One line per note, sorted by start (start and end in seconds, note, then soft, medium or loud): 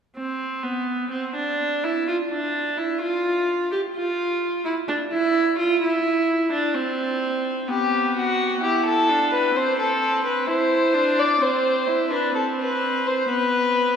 0.16 0.65 C4 medium
0.63 1.10 B3 medium
1.11 1.35 C4 medium
1.35 1.85 D4 medium
1.84 2.07 E4 medium
2.08 2.16 F4 medium
2.30 2.79 D4 medium
2.78 3.01 E4 medium
3.02 3.71 F4 medium
3.72 3.80 G4 medium
3.95 4.64 F4 medium
4.65 4.73 E4 medium
4.88 4.96 D4 medium
5.12 5.58 E4 medium
5.59 5.82 F4 medium
5.82 6.51 E4 medium
6.52 6.77 D4 medium
6.75 7.69 C4 medium
7.68 8.61 B3 medium
7.68 8.12 G4 medium
8.17 8.62 F#4 medium
8.61 9.11 E4 medium
8.61 8.85 G4 medium
8.86 9.31 A4 medium
9.09 9.54 D4 medium
9.33 9.58 B4 medium
9.55 10.49 C4 medium
9.55 9.78 C5 medium
9.79 10.24 A4 medium
10.25 10.48 B4 medium
10.47 10.95 E4 medium
10.47 11.20 C5 medium
10.94 11.40 D4 medium
11.19 11.44 D5 medium
11.41 11.89 C4 medium
11.41 12.10 C5 medium
11.87 12.12 E4 medium
12.11 12.35 D4 medium
12.11 12.34 B4 medium
12.35 13.28 C4 medium
12.35 12.44 A4 medium
12.60 13.08 B4 medium
13.07 13.30 C5 medium
13.30 13.96 B3 medium
13.30 13.96 B4 medium